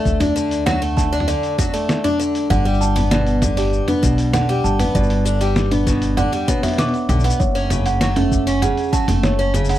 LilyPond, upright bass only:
\new Staff \with { instrumentName = "Upright bass" } { \clef bass \time 4/4 \key g \lydian \tempo 4 = 98 d,2 r2 | g,,2 r8 b,,8. r16 g,,16 r16 | g,,2 r4. b,,16 r16 | fis,,2 r8. fis,,4 r16 | }